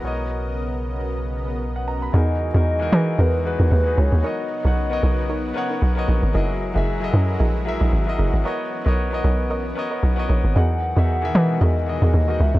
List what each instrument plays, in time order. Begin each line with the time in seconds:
Already playing: analog synth pad F#4 A#4 D#5
0.00 sub bass B1, analog synth pad C#3 B3, grand piano B3 A#4
0.05 grand piano C#5 D#5
1.76 grand piano F#5
1.88 grand piano A#5
2.02 grand piano B5
2.12 log drum bass E2, grand piano E3 D#4 F#4 G#4 A#4, analog synth pad E3 F#3 G#3 D#4 F#4, synth pluck D#4 F#4 G#4 A#4, soft synth lead D#5
2.53 log drum bass E2, grand piano E3 D#4 F#4 G#4 A#4, synth pluck D#4 F#4 G#4 A#4
2.79 grand piano E3 D#4 F#4 G#4 A#4
2.92 log drum bass E3, synth pluck D#4 F#4 G#4 A#4
3.19 log drum bass E2, synth pluck D#4 F#4 G#4 A#4, soft synth lead B4
3.43 grand piano E3 D#4 F#4 G#4 B4, soft synth lead B4
3.59 log drum bass E2, synth pluck D#4 F#4 G#4 A#4
3.71 log drum bass D#2
3.84 grand piano E3 D#4 F#4 G#4 B4
3.97 log drum bass C#2, synth pluck D#4 F#4 G#4 A#4, soft synth lead C#5
4.12 log drum bass D#2
4.23 analog synth pad C#3 B3, grand piano B3 A#4 C#5 D#5, synth pluck D#4 A#4 C#5, soft synth lead D#5
4.63 log drum bass B1, grand piano B3 A#4 C#5 F#5, synth pluck D#4 A#4 C#5
4.89 grand piano B3 A#4 C#5 D#5
5.03 log drum bass B1, synth pluck D#4 A#4 C#5
5.29 synth pluck D#4 A#4 C#5
5.54 grand piano B3 A#4 C#5 F#5
5.70 synth pluck D#4 A#4 C#5
5.82 log drum bass B1
5.95 grand piano B3 A#4 C#5 D#5
6.08 log drum bass A#1, synth pluck D#4 A#4 C#5
6.23 log drum bass G#1
6.33 log drum bass F#1, analog synth pad E3 G#3 E4, grand piano F#3 E4 G#4 A#4 D#5, synth pluck E4 G#4 A#4 D#5
6.74 log drum bass F#1, grand piano F#3 E4 G#4 A#4 E5, synth pluck E4 G#4 A#4 D#5
7.00 grand piano F#3 E4 G#4 A4 D#5
7.09 grand piano A#4
7.13 log drum bass F#2, synth pluck E4 G#4 A#4 D#5
7.40 log drum bass A#1, synth pluck E4 G#4 A#4 D#5
7.65 grand piano F#3 E4 G#4 A#4 E5
7.80 log drum bass A#1, synth pluck E4 G#4 A#4 D#5
7.93 log drum bass G#1
8.06 grand piano F#3 E4 G#4 A#4 D#5
8.19 log drum bass F#1, synth pluck E4 G#4 A#4 D#5
8.33 log drum bass G#1
8.44 grand piano B3 A#4 C#5 D#5, analog synth pad B3 C#4, synth pluck A#4 C#5 D#5
8.85 log drum bass B1, grand piano B3 A#4 C#5 D#5, synth pluck A#4 C#5 D#5
9.11 grand piano B3 A#4 C#5 D#5
9.24 log drum bass B1, synth pluck A#4 C#5 D#5
9.50 synth pluck A#4 C#5 D#5
9.75 grand piano B3 A#4 C#5 D#5
9.91 synth pluck A#4 C#5 D#5
10.03 log drum bass B1
10.16 grand piano B3 A#4 C#5 D#5
10.29 log drum bass A#1, synth pluck A#4 C#5 D#5
10.44 log drum bass G#1
10.54 log drum bass E2, analog synth pad B2 G#3 B3 F#4, grand piano E3 D#4 G#4 A#4 F#5, synth pluck F#4 G#4 A#4 D#5, soft synth lead F#5
10.95 log drum bass E2, grand piano E3 D#4 G#4 A#4 E5, synth pluck F#4 G#4 A#4 D#5
11.21 grand piano D#3 E3 G#4 A#4 E5
11.35 log drum bass E3, synth pluck F#4 G#4 A#4 D#5
11.61 log drum bass E2, synth pluck F#4 G#4 A#4 D#5, soft synth lead D#5
11.86 grand piano D#3 E3 G#4 A#4 D#5, soft synth lead D#5
12.02 log drum bass E2, synth pluck F#4 G#4 A#4 D#5
12.14 log drum bass D#2
12.27 grand piano E3 D#4 G#4 A#4 D#5, synth pluck F#4 G#4 A#4 D#5
12.40 log drum bass C#2, soft synth lead E5
12.55 log drum bass D#2